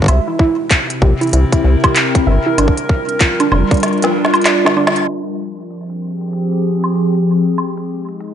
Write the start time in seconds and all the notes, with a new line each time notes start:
0.02 kick
0.04 kick
0.06 C2 C3 E5, kick, closed hi-hat, high woodblock
0.22 C4
0.28 E4
0.39 E4, kick
0.51 E4
0.71 kick, clap, closed hi-hat
0.88 A#4, closed hi-hat
1.02 A#1 G4, kick
1.21 E4, closed hi-hat
1.23 closed hi-hat
1.27 closed hi-hat
1.29 closed hi-hat
1.31 closed hi-hat
1.33 C2 E4, closed hi-hat
1.52 E4, kick, closed hi-hat
1.64 C2
1.84 G4, kick, closed hi-hat, high woodblock
1.96 clap, closed hi-hat
2.15 kick, closed hi-hat
2.27 G1 E5
2.46 E4
2.58 G1 G3 D4, closed hi-hat, high woodblock
2.67 F4, kick
2.77 closed hi-hat
2.85 D4
2.89 kick
3.09 closed hi-hat
3.21 F4, kick, clap, closed hi-hat
3.40 D4, closed hi-hat, high woodblock
3.52 F1 D4, high woodblock
3.71 D4, kick, closed hi-hat
3.74 closed hi-hat
3.77 closed hi-hat
3.80 snare, closed hi-hat
3.83 closed hi-hat
3.88 closed hi-hat
3.93 closed hi-hat
3.98 closed hi-hat
4.02 F4, snare, closed hi-hat
4.25 snare
4.34 closed hi-hat, high woodblock
4.35 closed hi-hat
4.42 snare, clap, closed hi-hat
4.45 D5, closed hi-hat, high woodblock
4.65 D4, snare
4.77 D4, high woodblock
4.87 snare
4.96 closed hi-hat
5.08 F3, closed hi-hat, high woodblock
5.25 C4, closed hi-hat
5.53 G4
5.59 closed hi-hat
5.66 G#4
5.70 closed hi-hat
5.90 closed hi-hat
6.21 closed hi-hat
6.33 closed hi-hat
6.52 closed hi-hat
6.84 closed hi-hat, high woodblock
6.96 closed hi-hat
7.15 closed hi-hat
7.58 G#3, closed hi-hat, high woodblock
7.77 closed hi-hat
7.84 D#4
8.09 closed hi-hat
8.21 closed hi-hat